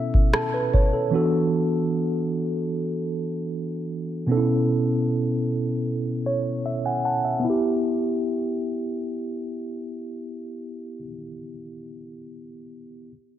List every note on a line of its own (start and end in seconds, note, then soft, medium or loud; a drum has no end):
0.00 1.08 B2 medium
0.00 1.08 B3 medium
0.00 1.09 C#4 medium
0.00 1.10 E4 medium
0.00 0.31 A4 medium
0.00 0.31 E5 medium
0.14 kick medium
0.34 0.53 A4 medium
0.34 1.09 A5 medium
0.34 cross-stick loud
0.54 0.72 B4 medium
0.74 0.92 C#5 medium
0.74 kick medium
0.93 1.14 A4 medium
1.11 4.23 E3 medium
1.11 4.24 B3 medium
1.11 4.25 D4 medium
1.11 4.25 F#4 medium
1.16 4.26 A4 medium
4.27 7.39 B2 medium
4.27 7.38 B3 medium
4.27 7.41 C#4 medium
4.27 4.36 D#4 medium
4.32 7.42 A4 medium
4.37 7.43 E4 medium
6.26 6.63 C#5 medium
6.66 6.84 E5 medium
6.85 7.04 F#5 medium
6.85 7.04 G#5 medium
7.05 7.24 F#5 medium
7.05 7.42 A5 medium
7.25 7.62 E5 medium
7.39 10.98 B3 medium
7.45 11.03 E4 medium
7.50 11.08 G4 medium